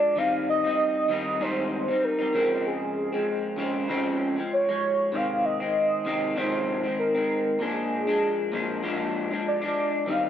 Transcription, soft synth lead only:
0.00 0.19 D5 loud
0.18 0.49 F5 loud
0.50 1.44 D#5 loud
1.42 2.06 C5 loud
2.04 2.65 A#4 medium
2.67 3.86 G#4 medium
4.53 5.17 C#5 loud
5.15 5.45 F5 loud
5.46 6.39 D#5 loud
6.38 6.99 C5 loud
7.00 7.63 A#4 loud
7.62 8.84 G#4 medium
9.48 10.11 D5 loud
10.10 10.29 F5 loud

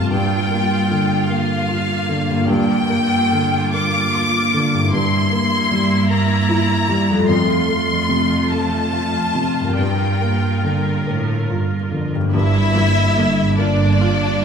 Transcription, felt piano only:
0.00 0.14 C3 soft
0.00 0.14 C4 soft
0.00 0.14 F4 soft
0.11 2.44 G2 soft
0.51 1.15 A#3 soft
0.91 1.54 D3 soft
1.30 1.93 A#3 soft
1.69 2.32 F4 soft
2.09 2.49 D3 soft
2.48 4.88 G2 soft
2.89 3.57 A#3 soft
3.32 3.98 D3 soft
3.73 4.37 A#3 soft
4.15 4.77 F4 soft
4.54 4.93 D3 soft
4.93 7.25 G2 soft
5.32 5.95 A#3 soft
5.71 6.34 G3 soft
6.10 6.73 A#3 soft
6.49 7.13 E4 soft
6.89 7.29 G3 soft
7.29 9.74 F2 soft
7.68 8.34 A3 soft
8.09 8.76 C3 soft
8.52 9.18 A3 soft
8.93 9.61 F4 soft
9.35 9.77 C3 soft
9.79 12.31 G2 soft
10.21 10.89 A#3 soft
10.64 11.32 D3 soft
11.07 11.75 A#4 soft
11.50 12.18 F4 soft
11.92 12.34 D3 soft
12.34 14.45 G2 soft
12.76 13.42 A#3 soft
13.17 13.83 D3 soft
13.58 14.26 A#3 soft
14.01 14.45 F4 soft

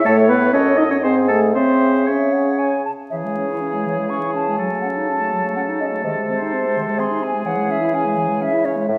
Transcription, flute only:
0.06 0.55 C#5 medium
0.53 1.03 A4 medium
1.03 1.56 G#4 medium
1.55 2.03 E5 medium
2.07 2.34 E5 medium
2.33 2.60 F#5 medium
2.59 2.85 G#5 medium
2.85 2.91 A5 medium
3.10 3.16 E5 medium
3.37 4.11 C#5 medium
4.09 4.34 C#6 medium
4.35 4.60 A5 medium
4.59 4.81 G#5 soft
4.81 4.87 F#5 medium
5.07 5.55 A5 medium
5.56 5.62 F#5 medium
5.80 5.86 D#5 medium
6.05 6.11 D#5 medium
6.29 7.01 C5 medium
6.99 7.25 C6 medium
7.23 7.48 G#5 medium
7.46 7.72 F#5 medium
7.71 7.96 E5 medium
7.95 8.44 G#5 medium
8.42 8.67 E5 medium
8.65 8.89 C#5 medium
8.90 8.98 E5 medium

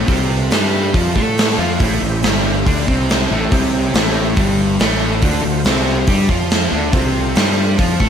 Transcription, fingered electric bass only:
0.08 0.48 C2 medium
0.51 0.91 G2 medium
0.94 1.14 F2 medium
1.16 1.55 A2 medium
1.58 1.78 F2 medium
1.80 2.00 A1 medium
2.02 2.21 A1 medium
2.24 2.63 G1 loud
2.67 2.86 D2 medium
2.88 3.27 C2 medium
3.31 3.50 A1 medium
3.52 3.91 C2 medium
3.94 4.34 A1 medium
4.37 4.77 G1 loud
4.80 5.20 A1 medium
5.23 5.42 D2 loud
5.44 5.64 D2 medium
5.65 6.05 C2 loud
6.08 6.28 G2 medium
6.29 6.69 F2 medium
6.72 6.92 D2 medium
6.93 7.33 C2 loud
7.36 7.76 G2 medium
7.79 7.99 F2 medium
8.01 8.09 A2 loud

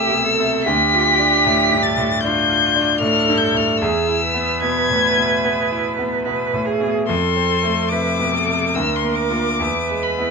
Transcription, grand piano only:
0.00 0.62 C2 medium
0.00 0.10 B2 soft
0.00 0.39 C3 medium
0.00 0.69 A3 medium
0.00 0.68 E4 medium
0.10 0.39 B2 medium
0.39 0.66 C3 medium
0.66 2.20 D2 medium
0.94 1.35 F4 medium
1.19 1.61 D4 medium
1.46 1.88 A2 medium
1.71 1.98 G2 medium
1.97 2.40 A2 medium
2.24 2.66 D4 medium
2.49 2.92 F4 medium
2.76 3.18 D4 medium
3.01 3.44 A2 medium
3.29 3.55 G2 medium
3.54 3.82 A2 medium
3.81 5.40 E2 medium
4.08 4.52 E4 medium
4.34 4.79 B3 medium
4.62 5.06 B2 medium
4.90 5.17 A2 soft
5.18 5.61 B2 medium
5.45 5.88 B3 medium
5.71 6.15 E4 medium
5.99 6.42 B3 medium
6.26 6.69 B2 medium
6.53 6.80 A2 medium
6.80 7.08 B2 medium
7.09 8.72 F2 medium
7.36 7.80 C4 medium
7.64 8.08 A3 medium
7.92 8.36 C3 medium
8.19 8.47 B2 medium
8.48 8.76 C3 medium
8.76 9.58 D2 medium
9.03 9.29 A#3 medium
9.30 9.57 A#3 medium
9.30 9.57 F4 medium
9.60 10.31 E2 medium
9.90 10.31 G#3 medium
10.18 10.31 B3 soft
10.18 10.31 E4 medium

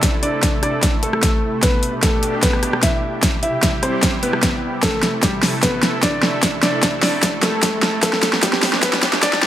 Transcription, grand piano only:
0.00 0.15 D4 medium
0.00 0.15 D5 medium
0.23 0.52 D4 medium
0.23 0.52 D5 medium
0.63 0.92 D4 medium
0.63 0.92 D5 medium
1.03 1.55 A3 medium
1.03 1.55 A4 medium
1.63 1.92 B3 medium
1.63 1.92 B4 loud
2.03 2.32 A3 medium
2.03 2.32 A4 medium
2.43 2.72 B3 medium
2.43 2.72 B4 medium
2.83 3.35 E4 medium
2.83 3.35 E5 medium
3.43 3.72 E4 medium
3.43 3.72 E5 medium
3.83 4.12 C4 medium
3.83 4.12 C5 medium
4.23 4.75 B3 medium
4.23 4.75 B4 medium
4.83 5.12 A3 medium
4.83 5.12 A4 medium
5.23 5.52 G3 medium
5.23 5.52 G4 medium
5.63 5.92 B3 medium
5.63 5.92 B4 medium
6.03 6.55 D4 medium
6.03 6.55 D5 medium
6.63 6.92 D4 medium
6.63 6.92 D5 medium
7.03 7.32 D4 medium
7.03 7.32 D5 medium
7.43 7.95 A3 medium
7.43 7.95 A4 medium
8.03 8.32 A3 medium
8.03 8.32 A4 loud
8.43 8.72 G3 medium
8.43 8.72 G4 medium
8.83 9.12 B3 medium
8.83 9.12 B4 medium
9.23 9.47 D4 medium
9.23 9.47 D5 loud

